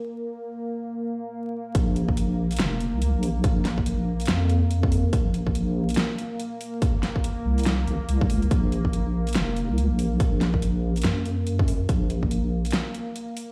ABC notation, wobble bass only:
X:1
M:4/4
L:1/16
Q:"Swing 16ths" 1/4=142
K:Bbm
V:1 name="Wobble bass" clef=bass
z16 | B,,,8 F,,,3 D,,2 B,,,3 | B,,,8 F,,8 | B,,,8 z8 |
z6 C,,4 B,,, z C,,2 D,,2 | B,,,8 F,,,3 D,,2 B,,,3 | B,,,8 G,,8 | B,,,8 z8 |]